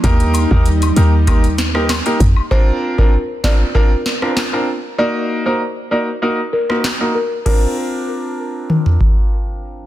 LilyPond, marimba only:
\new Staff \with { instrumentName = "Marimba" } { \time 4/4 \key bes \major \tempo 4 = 97 r1 | c''16 r8 bes'16 r8 d''16 r16 bes'8. r4 r16 | d''16 r8 c''16 r8 d''16 r8. bes'16 r8. bes'16 r16 | bes'2. r4 | }